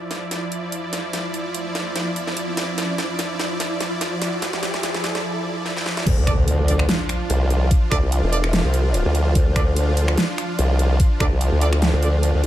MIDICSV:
0, 0, Header, 1, 8, 480
1, 0, Start_track
1, 0, Key_signature, -1, "minor"
1, 0, Tempo, 410959
1, 1325, Time_signature, 4, 2, 24, 8
1, 14560, End_track
2, 0, Start_track
2, 0, Title_t, "Brass ensemble"
2, 0, Program_c, 0, 61
2, 7324, Note_on_c, 0, 62, 82
2, 7324, Note_on_c, 0, 74, 92
2, 7325, Note_on_c, 0, 69, 74
2, 7391, Note_off_c, 0, 62, 0
2, 7391, Note_off_c, 0, 69, 0
2, 7391, Note_off_c, 0, 74, 0
2, 7804, Note_on_c, 0, 62, 73
2, 7804, Note_on_c, 0, 69, 68
2, 7804, Note_on_c, 0, 74, 81
2, 7871, Note_off_c, 0, 62, 0
2, 7871, Note_off_c, 0, 69, 0
2, 7871, Note_off_c, 0, 74, 0
2, 9244, Note_on_c, 0, 62, 98
2, 9244, Note_on_c, 0, 69, 94
2, 9244, Note_on_c, 0, 74, 114
2, 9311, Note_off_c, 0, 62, 0
2, 9311, Note_off_c, 0, 69, 0
2, 9311, Note_off_c, 0, 74, 0
2, 9725, Note_on_c, 0, 62, 102
2, 9725, Note_on_c, 0, 69, 93
2, 9725, Note_on_c, 0, 74, 109
2, 9792, Note_off_c, 0, 62, 0
2, 9792, Note_off_c, 0, 69, 0
2, 9792, Note_off_c, 0, 74, 0
2, 11165, Note_on_c, 0, 62, 84
2, 11165, Note_on_c, 0, 69, 76
2, 11165, Note_on_c, 0, 74, 88
2, 11231, Note_off_c, 0, 62, 0
2, 11231, Note_off_c, 0, 69, 0
2, 11231, Note_off_c, 0, 74, 0
2, 13085, Note_on_c, 0, 62, 100
2, 13085, Note_on_c, 0, 69, 91
2, 13085, Note_on_c, 0, 74, 107
2, 13151, Note_off_c, 0, 74, 0
2, 13152, Note_off_c, 0, 62, 0
2, 13152, Note_off_c, 0, 69, 0
2, 13565, Note_on_c, 0, 62, 98
2, 13565, Note_on_c, 0, 69, 89
2, 13565, Note_on_c, 0, 74, 109
2, 13631, Note_off_c, 0, 62, 0
2, 13631, Note_off_c, 0, 69, 0
2, 13631, Note_off_c, 0, 74, 0
2, 14044, Note_on_c, 0, 62, 76
2, 14044, Note_on_c, 0, 69, 67
2, 14044, Note_on_c, 0, 74, 86
2, 14111, Note_off_c, 0, 62, 0
2, 14111, Note_off_c, 0, 69, 0
2, 14111, Note_off_c, 0, 74, 0
2, 14560, End_track
3, 0, Start_track
3, 0, Title_t, "Supersaw synth"
3, 0, Program_c, 1, 81
3, 0, Note_on_c, 1, 53, 79
3, 0, Note_on_c, 1, 64, 73
3, 0, Note_on_c, 1, 74, 86
3, 7038, Note_off_c, 1, 53, 0
3, 7038, Note_off_c, 1, 64, 0
3, 7038, Note_off_c, 1, 74, 0
3, 7084, Note_on_c, 1, 65, 87
3, 7085, Note_on_c, 1, 53, 82
3, 7085, Note_on_c, 1, 62, 72
3, 14560, Note_off_c, 1, 53, 0
3, 14560, Note_off_c, 1, 62, 0
3, 14560, Note_off_c, 1, 65, 0
3, 14560, End_track
4, 0, Start_track
4, 0, Title_t, "Wobble bass"
4, 0, Program_c, 2, 39
4, 7085, Note_on_c, 2, 38, 100
4, 8027, Note_off_c, 2, 38, 0
4, 9615, Note_on_c, 2, 28, 101
4, 10074, Note_off_c, 2, 28, 0
4, 10094, Note_on_c, 2, 36, 97
4, 10553, Note_off_c, 2, 36, 0
4, 10925, Note_on_c, 2, 38, 100
4, 11867, Note_off_c, 2, 38, 0
4, 13934, Note_on_c, 2, 38, 98
4, 14393, Note_off_c, 2, 38, 0
4, 14415, Note_on_c, 2, 38, 96
4, 14507, Note_off_c, 2, 38, 0
4, 14525, Note_on_c, 2, 33, 95
4, 14560, Note_off_c, 2, 33, 0
4, 14560, End_track
5, 0, Start_track
5, 0, Title_t, "Wobble bass"
5, 0, Program_c, 3, 39
5, 8524, Note_on_c, 3, 36, 97
5, 8987, Note_off_c, 3, 36, 0
5, 9244, Note_on_c, 3, 38, 95
5, 9354, Note_off_c, 3, 38, 0
5, 9375, Note_on_c, 3, 36, 95
5, 9594, Note_off_c, 3, 36, 0
5, 10575, Note_on_c, 3, 38, 96
5, 10907, Note_off_c, 3, 38, 0
5, 12365, Note_on_c, 3, 36, 94
5, 12827, Note_off_c, 3, 36, 0
5, 13085, Note_on_c, 3, 38, 97
5, 13194, Note_off_c, 3, 38, 0
5, 13215, Note_on_c, 3, 36, 94
5, 13434, Note_off_c, 3, 36, 0
5, 13455, Note_on_c, 3, 38, 101
5, 13914, Note_off_c, 3, 38, 0
5, 14560, End_track
6, 0, Start_track
6, 0, Title_t, "Impact"
6, 0, Program_c, 4, 103
6, 7085, Note_on_c, 4, 60, 76
6, 9005, Note_off_c, 4, 60, 0
6, 14560, End_track
7, 0, Start_track
7, 0, Title_t, "Riser"
7, 0, Program_c, 5, 103
7, 0, Note_on_c, 5, 60, 73
7, 6125, Note_off_c, 5, 60, 0
7, 14560, End_track
8, 0, Start_track
8, 0, Title_t, "Drums"
8, 125, Note_on_c, 9, 38, 51
8, 125, Note_on_c, 9, 46, 63
8, 242, Note_off_c, 9, 38, 0
8, 242, Note_off_c, 9, 46, 0
8, 365, Note_on_c, 9, 38, 49
8, 365, Note_on_c, 9, 42, 77
8, 481, Note_off_c, 9, 38, 0
8, 481, Note_off_c, 9, 42, 0
8, 604, Note_on_c, 9, 42, 60
8, 721, Note_off_c, 9, 42, 0
8, 844, Note_on_c, 9, 42, 75
8, 961, Note_off_c, 9, 42, 0
8, 1084, Note_on_c, 9, 38, 54
8, 1084, Note_on_c, 9, 46, 94
8, 1200, Note_off_c, 9, 38, 0
8, 1200, Note_off_c, 9, 46, 0
8, 1324, Note_on_c, 9, 38, 57
8, 1324, Note_on_c, 9, 42, 77
8, 1441, Note_off_c, 9, 38, 0
8, 1441, Note_off_c, 9, 42, 0
8, 1564, Note_on_c, 9, 42, 53
8, 1681, Note_off_c, 9, 42, 0
8, 1804, Note_on_c, 9, 42, 77
8, 1921, Note_off_c, 9, 42, 0
8, 2044, Note_on_c, 9, 38, 63
8, 2044, Note_on_c, 9, 46, 62
8, 2161, Note_off_c, 9, 38, 0
8, 2161, Note_off_c, 9, 46, 0
8, 2284, Note_on_c, 9, 38, 62
8, 2284, Note_on_c, 9, 42, 80
8, 2401, Note_off_c, 9, 38, 0
8, 2401, Note_off_c, 9, 42, 0
8, 2525, Note_on_c, 9, 42, 61
8, 2641, Note_off_c, 9, 42, 0
8, 2654, Note_on_c, 9, 38, 58
8, 2765, Note_on_c, 9, 42, 77
8, 2771, Note_off_c, 9, 38, 0
8, 2881, Note_off_c, 9, 42, 0
8, 3004, Note_on_c, 9, 38, 72
8, 3004, Note_on_c, 9, 46, 93
8, 3121, Note_off_c, 9, 38, 0
8, 3121, Note_off_c, 9, 46, 0
8, 3245, Note_on_c, 9, 38, 70
8, 3245, Note_on_c, 9, 42, 78
8, 3362, Note_off_c, 9, 38, 0
8, 3362, Note_off_c, 9, 42, 0
8, 3485, Note_on_c, 9, 38, 76
8, 3485, Note_on_c, 9, 42, 53
8, 3601, Note_off_c, 9, 38, 0
8, 3601, Note_off_c, 9, 42, 0
8, 3724, Note_on_c, 9, 38, 73
8, 3724, Note_on_c, 9, 42, 79
8, 3841, Note_off_c, 9, 38, 0
8, 3841, Note_off_c, 9, 42, 0
8, 3965, Note_on_c, 9, 38, 79
8, 3965, Note_on_c, 9, 46, 60
8, 4082, Note_off_c, 9, 38, 0
8, 4082, Note_off_c, 9, 46, 0
8, 4205, Note_on_c, 9, 38, 82
8, 4205, Note_on_c, 9, 42, 80
8, 4322, Note_off_c, 9, 38, 0
8, 4322, Note_off_c, 9, 42, 0
8, 4444, Note_on_c, 9, 38, 85
8, 4444, Note_on_c, 9, 42, 63
8, 4561, Note_off_c, 9, 38, 0
8, 4561, Note_off_c, 9, 42, 0
8, 4685, Note_on_c, 9, 38, 82
8, 4685, Note_on_c, 9, 42, 79
8, 4802, Note_off_c, 9, 38, 0
8, 4802, Note_off_c, 9, 42, 0
8, 4924, Note_on_c, 9, 38, 90
8, 4924, Note_on_c, 9, 46, 89
8, 5041, Note_off_c, 9, 38, 0
8, 5041, Note_off_c, 9, 46, 0
8, 5165, Note_on_c, 9, 38, 88
8, 5165, Note_on_c, 9, 42, 74
8, 5282, Note_off_c, 9, 38, 0
8, 5282, Note_off_c, 9, 42, 0
8, 5294, Note_on_c, 9, 38, 86
8, 5405, Note_off_c, 9, 38, 0
8, 5405, Note_on_c, 9, 38, 96
8, 5405, Note_on_c, 9, 42, 50
8, 5522, Note_off_c, 9, 38, 0
8, 5522, Note_off_c, 9, 42, 0
8, 5534, Note_on_c, 9, 38, 87
8, 5645, Note_off_c, 9, 38, 0
8, 5645, Note_on_c, 9, 38, 90
8, 5645, Note_on_c, 9, 42, 80
8, 5762, Note_off_c, 9, 38, 0
8, 5762, Note_off_c, 9, 42, 0
8, 5775, Note_on_c, 9, 38, 87
8, 5885, Note_off_c, 9, 38, 0
8, 5885, Note_on_c, 9, 38, 102
8, 5885, Note_on_c, 9, 46, 62
8, 6002, Note_off_c, 9, 38, 0
8, 6002, Note_off_c, 9, 46, 0
8, 6015, Note_on_c, 9, 38, 94
8, 6132, Note_off_c, 9, 38, 0
8, 6605, Note_on_c, 9, 38, 58
8, 6722, Note_off_c, 9, 38, 0
8, 6735, Note_on_c, 9, 38, 65
8, 6845, Note_off_c, 9, 38, 0
8, 6845, Note_on_c, 9, 38, 88
8, 6962, Note_off_c, 9, 38, 0
8, 6975, Note_on_c, 9, 38, 86
8, 7085, Note_on_c, 9, 36, 118
8, 7085, Note_on_c, 9, 42, 80
8, 7085, Note_on_c, 9, 49, 101
8, 7092, Note_off_c, 9, 38, 0
8, 7201, Note_off_c, 9, 36, 0
8, 7202, Note_off_c, 9, 42, 0
8, 7202, Note_off_c, 9, 49, 0
8, 7325, Note_on_c, 9, 26, 75
8, 7325, Note_on_c, 9, 36, 106
8, 7325, Note_on_c, 9, 42, 53
8, 7441, Note_off_c, 9, 36, 0
8, 7442, Note_off_c, 9, 26, 0
8, 7442, Note_off_c, 9, 42, 0
8, 7565, Note_on_c, 9, 42, 78
8, 7682, Note_off_c, 9, 42, 0
8, 7805, Note_on_c, 9, 46, 98
8, 7921, Note_off_c, 9, 46, 0
8, 7934, Note_on_c, 9, 26, 75
8, 8044, Note_on_c, 9, 38, 118
8, 8044, Note_on_c, 9, 42, 83
8, 8051, Note_off_c, 9, 26, 0
8, 8161, Note_off_c, 9, 38, 0
8, 8161, Note_off_c, 9, 42, 0
8, 8284, Note_on_c, 9, 26, 51
8, 8284, Note_on_c, 9, 42, 65
8, 8401, Note_off_c, 9, 26, 0
8, 8401, Note_off_c, 9, 42, 0
8, 8525, Note_on_c, 9, 42, 81
8, 8641, Note_off_c, 9, 42, 0
8, 8765, Note_on_c, 9, 42, 57
8, 8882, Note_off_c, 9, 42, 0
8, 9004, Note_on_c, 9, 36, 127
8, 9005, Note_on_c, 9, 42, 81
8, 9121, Note_off_c, 9, 36, 0
8, 9122, Note_off_c, 9, 42, 0
8, 9244, Note_on_c, 9, 36, 113
8, 9245, Note_on_c, 9, 26, 75
8, 9245, Note_on_c, 9, 42, 56
8, 9361, Note_off_c, 9, 36, 0
8, 9362, Note_off_c, 9, 26, 0
8, 9362, Note_off_c, 9, 42, 0
8, 9485, Note_on_c, 9, 42, 84
8, 9602, Note_off_c, 9, 42, 0
8, 9725, Note_on_c, 9, 46, 98
8, 9841, Note_off_c, 9, 46, 0
8, 9855, Note_on_c, 9, 26, 78
8, 9965, Note_on_c, 9, 38, 118
8, 9965, Note_on_c, 9, 42, 83
8, 9972, Note_off_c, 9, 26, 0
8, 10081, Note_off_c, 9, 38, 0
8, 10081, Note_off_c, 9, 42, 0
8, 10205, Note_on_c, 9, 42, 65
8, 10322, Note_off_c, 9, 42, 0
8, 10444, Note_on_c, 9, 42, 83
8, 10561, Note_off_c, 9, 42, 0
8, 10684, Note_on_c, 9, 42, 56
8, 10801, Note_off_c, 9, 42, 0
8, 10924, Note_on_c, 9, 36, 127
8, 10925, Note_on_c, 9, 42, 82
8, 11041, Note_off_c, 9, 36, 0
8, 11041, Note_off_c, 9, 42, 0
8, 11164, Note_on_c, 9, 36, 116
8, 11165, Note_on_c, 9, 26, 75
8, 11165, Note_on_c, 9, 42, 54
8, 11281, Note_off_c, 9, 36, 0
8, 11282, Note_off_c, 9, 26, 0
8, 11282, Note_off_c, 9, 42, 0
8, 11405, Note_on_c, 9, 42, 83
8, 11521, Note_off_c, 9, 42, 0
8, 11645, Note_on_c, 9, 46, 90
8, 11762, Note_off_c, 9, 46, 0
8, 11775, Note_on_c, 9, 26, 84
8, 11885, Note_on_c, 9, 38, 118
8, 11885, Note_on_c, 9, 42, 80
8, 11892, Note_off_c, 9, 26, 0
8, 12002, Note_off_c, 9, 38, 0
8, 12002, Note_off_c, 9, 42, 0
8, 12125, Note_on_c, 9, 26, 53
8, 12125, Note_on_c, 9, 42, 64
8, 12242, Note_off_c, 9, 26, 0
8, 12242, Note_off_c, 9, 42, 0
8, 12365, Note_on_c, 9, 42, 78
8, 12482, Note_off_c, 9, 42, 0
8, 12606, Note_on_c, 9, 42, 55
8, 12722, Note_off_c, 9, 42, 0
8, 12844, Note_on_c, 9, 36, 127
8, 12846, Note_on_c, 9, 42, 79
8, 12961, Note_off_c, 9, 36, 0
8, 12963, Note_off_c, 9, 42, 0
8, 13084, Note_on_c, 9, 36, 111
8, 13086, Note_on_c, 9, 26, 81
8, 13086, Note_on_c, 9, 42, 52
8, 13201, Note_off_c, 9, 36, 0
8, 13203, Note_off_c, 9, 26, 0
8, 13203, Note_off_c, 9, 42, 0
8, 13326, Note_on_c, 9, 42, 75
8, 13443, Note_off_c, 9, 42, 0
8, 13566, Note_on_c, 9, 46, 93
8, 13683, Note_off_c, 9, 46, 0
8, 13696, Note_on_c, 9, 26, 87
8, 13806, Note_on_c, 9, 38, 122
8, 13806, Note_on_c, 9, 42, 81
8, 13813, Note_off_c, 9, 26, 0
8, 13923, Note_off_c, 9, 38, 0
8, 13923, Note_off_c, 9, 42, 0
8, 14046, Note_on_c, 9, 42, 61
8, 14162, Note_off_c, 9, 42, 0
8, 14285, Note_on_c, 9, 42, 76
8, 14402, Note_off_c, 9, 42, 0
8, 14560, End_track
0, 0, End_of_file